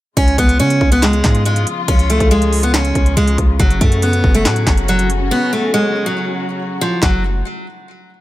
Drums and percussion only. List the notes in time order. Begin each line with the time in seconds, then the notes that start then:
0.17 kick, closed hi-hat
0.28 closed hi-hat
0.38 kick, closed hi-hat
0.49 closed hi-hat
0.60 closed hi-hat
0.70 closed hi-hat
0.81 kick
0.92 closed hi-hat
1.02 snare, clap, closed hi-hat
1.13 closed hi-hat
1.24 kick, snare, clap, closed hi-hat
1.35 closed hi-hat
1.45 closed hi-hat
1.56 closed hi-hat
1.67 closed hi-hat
1.88 kick, closed hi-hat
1.99 closed hi-hat
2.10 closed hi-hat
2.20 kick, closed hi-hat
2.31 closed hi-hat
2.42 closed hi-hat
2.53 open hi-hat
2.63 closed hi-hat
2.74 snare, clap, closed hi-hat
2.85 closed hi-hat
2.95 kick, closed hi-hat
3.06 closed hi-hat
3.17 closed hi-hat
3.27 closed hi-hat
3.38 kick, closed hi-hat
3.60 kick, closed hi-hat
3.70 closed hi-hat
3.81 kick, closed hi-hat
3.92 closed hi-hat
4.02 closed hi-hat
4.13 closed hi-hat
4.24 kick
4.35 closed hi-hat
4.45 snare, clap, closed hi-hat
4.56 closed hi-hat
4.67 kick, snare, clap, closed hi-hat
4.77 closed hi-hat
4.88 closed hi-hat
4.99 closed hi-hat
5.10 closed hi-hat
7.03 kick, snare, clap